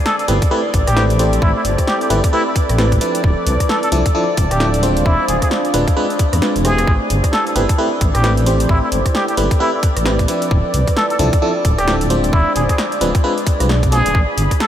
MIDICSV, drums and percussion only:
0, 0, Header, 1, 2, 480
1, 0, Start_track
1, 0, Key_signature, 0, "minor"
1, 0, Tempo, 454545
1, 1500, Time_signature, 4, 2, 24, 8
1, 15492, End_track
2, 0, Start_track
2, 0, Title_t, "Drums"
2, 59, Note_on_c, 9, 38, 122
2, 165, Note_off_c, 9, 38, 0
2, 204, Note_on_c, 9, 42, 34
2, 299, Note_on_c, 9, 46, 107
2, 310, Note_off_c, 9, 42, 0
2, 404, Note_off_c, 9, 46, 0
2, 444, Note_on_c, 9, 36, 101
2, 444, Note_on_c, 9, 42, 67
2, 549, Note_off_c, 9, 36, 0
2, 549, Note_off_c, 9, 42, 0
2, 779, Note_on_c, 9, 36, 100
2, 779, Note_on_c, 9, 46, 99
2, 885, Note_off_c, 9, 36, 0
2, 885, Note_off_c, 9, 46, 0
2, 924, Note_on_c, 9, 37, 64
2, 924, Note_on_c, 9, 42, 64
2, 1020, Note_on_c, 9, 38, 116
2, 1029, Note_off_c, 9, 37, 0
2, 1029, Note_off_c, 9, 42, 0
2, 1126, Note_off_c, 9, 38, 0
2, 1164, Note_on_c, 9, 42, 55
2, 1260, Note_on_c, 9, 46, 102
2, 1270, Note_off_c, 9, 42, 0
2, 1366, Note_off_c, 9, 46, 0
2, 1405, Note_on_c, 9, 42, 63
2, 1499, Note_on_c, 9, 36, 119
2, 1510, Note_off_c, 9, 42, 0
2, 1605, Note_off_c, 9, 36, 0
2, 1740, Note_on_c, 9, 46, 105
2, 1846, Note_off_c, 9, 46, 0
2, 1884, Note_on_c, 9, 36, 57
2, 1885, Note_on_c, 9, 37, 49
2, 1885, Note_on_c, 9, 42, 69
2, 1980, Note_on_c, 9, 38, 118
2, 1989, Note_off_c, 9, 36, 0
2, 1990, Note_off_c, 9, 37, 0
2, 1990, Note_off_c, 9, 42, 0
2, 2086, Note_off_c, 9, 38, 0
2, 2125, Note_on_c, 9, 42, 35
2, 2220, Note_on_c, 9, 46, 111
2, 2231, Note_off_c, 9, 42, 0
2, 2326, Note_off_c, 9, 46, 0
2, 2364, Note_on_c, 9, 36, 101
2, 2365, Note_on_c, 9, 42, 69
2, 2469, Note_off_c, 9, 36, 0
2, 2471, Note_off_c, 9, 42, 0
2, 2699, Note_on_c, 9, 36, 94
2, 2701, Note_on_c, 9, 46, 104
2, 2805, Note_off_c, 9, 36, 0
2, 2806, Note_off_c, 9, 46, 0
2, 2845, Note_on_c, 9, 37, 66
2, 2845, Note_on_c, 9, 42, 70
2, 2940, Note_on_c, 9, 38, 117
2, 2951, Note_off_c, 9, 37, 0
2, 2951, Note_off_c, 9, 42, 0
2, 3046, Note_off_c, 9, 38, 0
2, 3084, Note_on_c, 9, 36, 60
2, 3085, Note_on_c, 9, 42, 58
2, 3180, Note_on_c, 9, 46, 109
2, 3190, Note_off_c, 9, 36, 0
2, 3190, Note_off_c, 9, 42, 0
2, 3286, Note_off_c, 9, 46, 0
2, 3325, Note_on_c, 9, 42, 67
2, 3420, Note_on_c, 9, 36, 119
2, 3430, Note_off_c, 9, 42, 0
2, 3525, Note_off_c, 9, 36, 0
2, 3660, Note_on_c, 9, 46, 111
2, 3765, Note_off_c, 9, 46, 0
2, 3804, Note_on_c, 9, 36, 55
2, 3804, Note_on_c, 9, 37, 52
2, 3804, Note_on_c, 9, 42, 72
2, 3900, Note_on_c, 9, 38, 121
2, 3910, Note_off_c, 9, 36, 0
2, 3910, Note_off_c, 9, 37, 0
2, 3910, Note_off_c, 9, 42, 0
2, 4006, Note_off_c, 9, 38, 0
2, 4044, Note_on_c, 9, 42, 38
2, 4139, Note_on_c, 9, 46, 112
2, 4150, Note_off_c, 9, 42, 0
2, 4245, Note_off_c, 9, 46, 0
2, 4284, Note_on_c, 9, 36, 102
2, 4284, Note_on_c, 9, 42, 67
2, 4390, Note_off_c, 9, 36, 0
2, 4390, Note_off_c, 9, 42, 0
2, 4619, Note_on_c, 9, 46, 112
2, 4620, Note_on_c, 9, 36, 97
2, 4725, Note_off_c, 9, 36, 0
2, 4725, Note_off_c, 9, 46, 0
2, 4764, Note_on_c, 9, 37, 64
2, 4764, Note_on_c, 9, 42, 70
2, 4860, Note_on_c, 9, 38, 115
2, 4870, Note_off_c, 9, 37, 0
2, 4870, Note_off_c, 9, 42, 0
2, 4965, Note_off_c, 9, 38, 0
2, 5004, Note_on_c, 9, 42, 56
2, 5100, Note_on_c, 9, 46, 108
2, 5110, Note_off_c, 9, 42, 0
2, 5206, Note_off_c, 9, 46, 0
2, 5245, Note_on_c, 9, 42, 69
2, 5340, Note_on_c, 9, 36, 115
2, 5351, Note_off_c, 9, 42, 0
2, 5446, Note_off_c, 9, 36, 0
2, 5580, Note_on_c, 9, 46, 116
2, 5686, Note_off_c, 9, 46, 0
2, 5724, Note_on_c, 9, 37, 54
2, 5724, Note_on_c, 9, 42, 69
2, 5725, Note_on_c, 9, 36, 57
2, 5820, Note_on_c, 9, 38, 120
2, 5830, Note_off_c, 9, 36, 0
2, 5830, Note_off_c, 9, 37, 0
2, 5830, Note_off_c, 9, 42, 0
2, 5925, Note_off_c, 9, 38, 0
2, 5964, Note_on_c, 9, 42, 35
2, 6060, Note_on_c, 9, 46, 117
2, 6069, Note_off_c, 9, 42, 0
2, 6165, Note_off_c, 9, 46, 0
2, 6205, Note_on_c, 9, 36, 101
2, 6205, Note_on_c, 9, 42, 66
2, 6310, Note_off_c, 9, 36, 0
2, 6311, Note_off_c, 9, 42, 0
2, 6445, Note_on_c, 9, 42, 39
2, 6540, Note_on_c, 9, 36, 102
2, 6540, Note_on_c, 9, 46, 117
2, 6550, Note_off_c, 9, 42, 0
2, 6646, Note_off_c, 9, 36, 0
2, 6646, Note_off_c, 9, 46, 0
2, 6684, Note_on_c, 9, 37, 70
2, 6684, Note_on_c, 9, 42, 68
2, 6779, Note_on_c, 9, 38, 117
2, 6790, Note_off_c, 9, 37, 0
2, 6790, Note_off_c, 9, 42, 0
2, 6885, Note_off_c, 9, 38, 0
2, 6925, Note_on_c, 9, 42, 56
2, 7020, Note_on_c, 9, 37, 61
2, 7020, Note_on_c, 9, 46, 106
2, 7031, Note_off_c, 9, 42, 0
2, 7126, Note_off_c, 9, 37, 0
2, 7126, Note_off_c, 9, 46, 0
2, 7164, Note_on_c, 9, 37, 70
2, 7164, Note_on_c, 9, 42, 67
2, 7260, Note_on_c, 9, 36, 122
2, 7270, Note_off_c, 9, 37, 0
2, 7270, Note_off_c, 9, 42, 0
2, 7365, Note_off_c, 9, 36, 0
2, 7499, Note_on_c, 9, 46, 109
2, 7605, Note_off_c, 9, 46, 0
2, 7644, Note_on_c, 9, 36, 63
2, 7644, Note_on_c, 9, 37, 54
2, 7644, Note_on_c, 9, 42, 65
2, 7739, Note_on_c, 9, 38, 124
2, 7750, Note_off_c, 9, 36, 0
2, 7750, Note_off_c, 9, 37, 0
2, 7750, Note_off_c, 9, 42, 0
2, 7845, Note_off_c, 9, 38, 0
2, 7885, Note_on_c, 9, 42, 35
2, 7980, Note_on_c, 9, 46, 113
2, 7990, Note_off_c, 9, 42, 0
2, 8086, Note_off_c, 9, 46, 0
2, 8124, Note_on_c, 9, 36, 108
2, 8124, Note_on_c, 9, 42, 67
2, 8230, Note_off_c, 9, 36, 0
2, 8230, Note_off_c, 9, 42, 0
2, 8459, Note_on_c, 9, 36, 102
2, 8460, Note_on_c, 9, 46, 109
2, 8565, Note_off_c, 9, 36, 0
2, 8565, Note_off_c, 9, 46, 0
2, 8604, Note_on_c, 9, 37, 71
2, 8604, Note_on_c, 9, 42, 63
2, 8699, Note_on_c, 9, 38, 119
2, 8710, Note_off_c, 9, 37, 0
2, 8710, Note_off_c, 9, 42, 0
2, 8805, Note_off_c, 9, 38, 0
2, 8843, Note_on_c, 9, 42, 53
2, 8939, Note_on_c, 9, 46, 109
2, 8949, Note_off_c, 9, 42, 0
2, 9044, Note_off_c, 9, 46, 0
2, 9083, Note_on_c, 9, 42, 63
2, 9179, Note_on_c, 9, 36, 124
2, 9189, Note_off_c, 9, 42, 0
2, 9285, Note_off_c, 9, 36, 0
2, 9419, Note_on_c, 9, 46, 102
2, 9525, Note_off_c, 9, 46, 0
2, 9564, Note_on_c, 9, 36, 62
2, 9564, Note_on_c, 9, 37, 55
2, 9564, Note_on_c, 9, 42, 66
2, 9659, Note_on_c, 9, 38, 122
2, 9669, Note_off_c, 9, 36, 0
2, 9669, Note_off_c, 9, 37, 0
2, 9669, Note_off_c, 9, 42, 0
2, 9765, Note_off_c, 9, 38, 0
2, 9804, Note_on_c, 9, 42, 36
2, 9899, Note_on_c, 9, 46, 108
2, 9909, Note_off_c, 9, 42, 0
2, 10005, Note_off_c, 9, 46, 0
2, 10044, Note_on_c, 9, 36, 107
2, 10044, Note_on_c, 9, 42, 63
2, 10149, Note_off_c, 9, 36, 0
2, 10150, Note_off_c, 9, 42, 0
2, 10379, Note_on_c, 9, 46, 107
2, 10380, Note_on_c, 9, 36, 110
2, 10485, Note_off_c, 9, 36, 0
2, 10485, Note_off_c, 9, 46, 0
2, 10524, Note_on_c, 9, 37, 67
2, 10524, Note_on_c, 9, 42, 65
2, 10618, Note_on_c, 9, 38, 125
2, 10629, Note_off_c, 9, 37, 0
2, 10629, Note_off_c, 9, 42, 0
2, 10724, Note_off_c, 9, 38, 0
2, 10764, Note_on_c, 9, 36, 66
2, 10764, Note_on_c, 9, 42, 52
2, 10859, Note_on_c, 9, 46, 107
2, 10869, Note_off_c, 9, 42, 0
2, 10870, Note_off_c, 9, 36, 0
2, 10965, Note_off_c, 9, 46, 0
2, 11003, Note_on_c, 9, 42, 64
2, 11100, Note_on_c, 9, 36, 127
2, 11109, Note_off_c, 9, 42, 0
2, 11205, Note_off_c, 9, 36, 0
2, 11340, Note_on_c, 9, 46, 105
2, 11445, Note_off_c, 9, 46, 0
2, 11484, Note_on_c, 9, 36, 65
2, 11484, Note_on_c, 9, 37, 55
2, 11484, Note_on_c, 9, 42, 64
2, 11580, Note_on_c, 9, 38, 127
2, 11590, Note_off_c, 9, 36, 0
2, 11590, Note_off_c, 9, 37, 0
2, 11590, Note_off_c, 9, 42, 0
2, 11685, Note_off_c, 9, 38, 0
2, 11725, Note_on_c, 9, 42, 34
2, 11820, Note_on_c, 9, 46, 107
2, 11831, Note_off_c, 9, 42, 0
2, 11926, Note_off_c, 9, 46, 0
2, 11964, Note_on_c, 9, 36, 110
2, 11965, Note_on_c, 9, 42, 66
2, 12070, Note_off_c, 9, 36, 0
2, 12070, Note_off_c, 9, 42, 0
2, 12300, Note_on_c, 9, 36, 103
2, 12300, Note_on_c, 9, 46, 103
2, 12405, Note_off_c, 9, 36, 0
2, 12406, Note_off_c, 9, 46, 0
2, 12445, Note_on_c, 9, 37, 70
2, 12445, Note_on_c, 9, 42, 60
2, 12540, Note_on_c, 9, 38, 127
2, 12550, Note_off_c, 9, 37, 0
2, 12550, Note_off_c, 9, 42, 0
2, 12646, Note_off_c, 9, 38, 0
2, 12684, Note_on_c, 9, 42, 52
2, 12780, Note_on_c, 9, 46, 106
2, 12790, Note_off_c, 9, 42, 0
2, 12886, Note_off_c, 9, 46, 0
2, 12925, Note_on_c, 9, 42, 60
2, 13020, Note_on_c, 9, 36, 127
2, 13031, Note_off_c, 9, 42, 0
2, 13125, Note_off_c, 9, 36, 0
2, 13260, Note_on_c, 9, 46, 96
2, 13366, Note_off_c, 9, 46, 0
2, 13404, Note_on_c, 9, 36, 63
2, 13404, Note_on_c, 9, 37, 55
2, 13404, Note_on_c, 9, 42, 63
2, 13499, Note_on_c, 9, 38, 127
2, 13510, Note_off_c, 9, 36, 0
2, 13510, Note_off_c, 9, 37, 0
2, 13510, Note_off_c, 9, 42, 0
2, 13605, Note_off_c, 9, 38, 0
2, 13645, Note_on_c, 9, 42, 34
2, 13740, Note_on_c, 9, 46, 107
2, 13751, Note_off_c, 9, 42, 0
2, 13846, Note_off_c, 9, 46, 0
2, 13884, Note_on_c, 9, 36, 109
2, 13885, Note_on_c, 9, 42, 63
2, 13990, Note_off_c, 9, 36, 0
2, 13991, Note_off_c, 9, 42, 0
2, 14125, Note_on_c, 9, 42, 39
2, 14220, Note_on_c, 9, 36, 105
2, 14220, Note_on_c, 9, 46, 102
2, 14231, Note_off_c, 9, 42, 0
2, 14325, Note_off_c, 9, 36, 0
2, 14325, Note_off_c, 9, 46, 0
2, 14365, Note_on_c, 9, 37, 66
2, 14365, Note_on_c, 9, 42, 64
2, 14461, Note_on_c, 9, 38, 126
2, 14471, Note_off_c, 9, 37, 0
2, 14471, Note_off_c, 9, 42, 0
2, 14566, Note_off_c, 9, 38, 0
2, 14604, Note_on_c, 9, 36, 66
2, 14605, Note_on_c, 9, 42, 52
2, 14701, Note_on_c, 9, 46, 99
2, 14710, Note_off_c, 9, 36, 0
2, 14711, Note_off_c, 9, 42, 0
2, 14806, Note_off_c, 9, 46, 0
2, 14846, Note_on_c, 9, 42, 63
2, 14940, Note_on_c, 9, 36, 122
2, 14951, Note_off_c, 9, 42, 0
2, 15045, Note_off_c, 9, 36, 0
2, 15181, Note_on_c, 9, 46, 106
2, 15287, Note_off_c, 9, 46, 0
2, 15324, Note_on_c, 9, 36, 59
2, 15325, Note_on_c, 9, 37, 49
2, 15325, Note_on_c, 9, 42, 65
2, 15421, Note_on_c, 9, 38, 121
2, 15430, Note_off_c, 9, 36, 0
2, 15431, Note_off_c, 9, 37, 0
2, 15431, Note_off_c, 9, 42, 0
2, 15492, Note_off_c, 9, 38, 0
2, 15492, End_track
0, 0, End_of_file